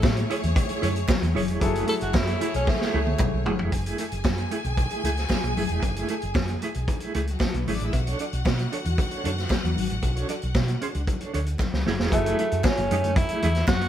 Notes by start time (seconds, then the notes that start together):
Already playing: A3 E4 G#4 A4 C#5
0.03 A2, muted clean electric guitar stroke, kick, snare, clap, high conga
0.17 closed hi-hat
0.30 E4 G#4 C#5, closed hi-hat
0.43 E2, muted clean electric guitar stroke, closed hi-hat, low conga
0.56 muted clean electric guitar stroke, kick, closed hi-hat, muted conga
0.69 E4 G#4 C#5, closed hi-hat
0.82 F#2 E4 G#4 C#5, closed hi-hat, low conga
0.95 muted clean electric guitar stroke, closed hi-hat
1.08 muted clean electric guitar stroke, kick, snare, clap, high conga
1.22 E2, closed hi-hat
1.35 F#1 E4 G#4 C#5, open hi-hat, high conga
1.48 E1 E4 G#4, closed hi-hat
1.60 F#1 F#3 A3 E4 G#4 A4 C#5, muted clean electric guitar stroke, kick, closed hi-hat, muted conga
1.74 A3 E4 G#4, closed hi-hat
1.87 A3 E4 A4, closed hi-hat, muted conga
2.01 F#1 F#4, muted clean electric guitar stroke, closed hi-hat
2.14 F#2 E4, muted clean electric guitar stroke, kick, snare, clap, high conga
2.27 closed hi-hat
2.41 A3 E4 G#4, closed hi-hat
2.54 B1 C#4, muted clean electric guitar stroke, closed hi-hat
2.67 A3, muted clean electric guitar stroke, kick, snare, muted conga
2.80 A3 E4 G#4, snare
2.94 C#2 A3 E4 G#4
3.07 muted clean electric guitar stroke, high tom
3.19 muted clean electric guitar stroke, kick, clap, mid tom, high conga
3.33 B1, muted clean electric guitar stroke
3.46 A3 E4 G#4, floor tom, high conga
3.59 E1 A3 E4 G#4, floor tom
3.72 F#1 G#4 G#5, muted clean electric guitar stroke, kick, closed hi-hat, muted conga
3.86 A3 E4 G#4, closed hi-hat
3.98 A3 E4 A4, closed hi-hat
4.12 F#1, muted clean electric guitar stroke, closed hi-hat
4.25 F#2, muted clean electric guitar stroke, kick, snare, clap, high conga
4.38 closed hi-hat
4.51 A3 E4 G#4, closed hi-hat
4.64 B1, muted clean electric guitar stroke, closed hi-hat, low conga
4.77 muted clean electric guitar stroke, kick, closed hi-hat, muted conga
4.90 A3 E4 G#4, closed hi-hat
5.04 C#2 A3 E4 G#4, closed hi-hat, low conga
5.17 muted clean electric guitar stroke, snare, closed hi-hat
5.29 muted clean electric guitar stroke, kick, snare, clap, high conga
5.43 B1, muted clean electric guitar stroke, closed hi-hat, high conga
5.57 F#1 A3 E4 G#4, open hi-hat, high conga
5.69 E1 A3 E4 G#4, closed hi-hat
5.82 F#1, muted clean electric guitar stroke, kick, closed hi-hat, muted conga
5.96 A3 E4 G#4, closed hi-hat
6.08 A3 E4 A4, closed hi-hat
6.22 F#1, muted clean electric guitar stroke, closed hi-hat
6.35 F#2, kick, snare, clap, high conga
6.48 closed hi-hat
6.62 A3 E4 G#4, closed hi-hat
6.74 B1, muted clean electric guitar stroke, closed hi-hat
6.88 muted clean electric guitar stroke, kick, closed hi-hat, muted conga
7.00 A3 E4 G#4, closed hi-hat
7.14 C#2 A3 E4 G#4, closed hi-hat
7.27 muted clean electric guitar stroke, closed hi-hat
7.31 F#3 F#4
7.40 G#3 G#4, muted clean electric guitar stroke, kick, snare, clap, high conga
7.48 A3 A4
7.53 B1, muted clean electric guitar stroke, closed hi-hat, high conga
7.58 B3 B4
7.66 G#1 A3 C#4 E4 G#4 C#5, open hi-hat, high conga
7.75 D4 D5
7.80 A1 A3 E4 G#4, closed hi-hat
7.84 E4 E5
7.92 B1 F#4 F#5, muted clean electric guitar stroke, kick, closed hi-hat, muted conga
8.07 D4 A4 C#5, closed hi-hat
8.19 D4 A4 D5, closed hi-hat, muted conga
8.33 B1, muted clean electric guitar stroke, closed hi-hat
8.45 B2, muted clean electric guitar stroke, kick, snare, clap, high conga
8.59 closed hi-hat
8.72 D4 A4 C#5, closed hi-hat
8.85 E2, muted clean electric guitar stroke, closed hi-hat, low conga
8.97 muted clean electric guitar stroke, kick, closed hi-hat, muted conga
9.11 D4 A4 C#5, closed hi-hat
9.24 F#2 D4 A4 C#5, closed hi-hat, low conga
9.38 muted clean electric guitar stroke, snare, closed hi-hat
9.49 muted clean electric guitar stroke, kick, snare, clap, high conga
9.63 E2, muted clean electric guitar stroke, closed hi-hat, high conga
9.76 G#1, open hi-hat, high conga
9.90 A1, muted clean electric guitar stroke, closed hi-hat
10.02 B1, muted clean electric guitar stroke, kick, closed hi-hat, muted conga
10.16 D4 A4 C#5, closed hi-hat
10.29 D4 A4 D5, closed hi-hat, muted conga
10.42 B1, closed hi-hat
10.55 B2, muted clean electric guitar stroke, kick, snare, clap, high conga
10.68 muted clean electric guitar stroke, closed hi-hat
10.81 D4 A4 C#5, closed hi-hat
10.94 C#2, muted clean electric guitar stroke, closed hi-hat
11.07 muted clean electric guitar stroke, kick, closed hi-hat, muted conga
11.21 D4 A4 C#5, closed hi-hat
11.34 D2 D4 A4 C#5, closed hi-hat
11.46 muted clean electric guitar stroke, closed hi-hat
11.59 muted clean electric guitar stroke, kick, snare, clap, high conga
11.73 C#2, snare, high conga
11.86 F#1 A3 E4 G#4, snare, high conga
11.99 E1 A3 E4 G#4, snare
12.11 F#1 F#3 A3 E4 G#4 A4, muted clean electric guitar stroke, kick, closed hi-hat, muted conga
12.25 A3 E4 G#4, closed hi-hat
12.39 A3 E4 A4, closed hi-hat, muted conga
12.52 F#2, closed hi-hat
12.64 C#4, muted clean electric guitar stroke, kick, snare, clap, high conga
12.77 F#1, closed hi-hat
12.91 F#2 A3 E4 G#4, closed hi-hat
13.04 muted clean electric guitar stroke, closed hi-hat, low conga
13.16 E4, muted clean electric guitar stroke, kick, closed hi-hat, muted conga
13.29 A3 E4 G#4, closed hi-hat
13.42 E2 A3 E4 G#4, closed hi-hat, low conga
13.55 muted clean electric guitar stroke, snare, closed hi-hat
13.68 F#2 F#4, muted clean electric guitar stroke, kick, snare, clap, high conga
13.81 closed hi-hat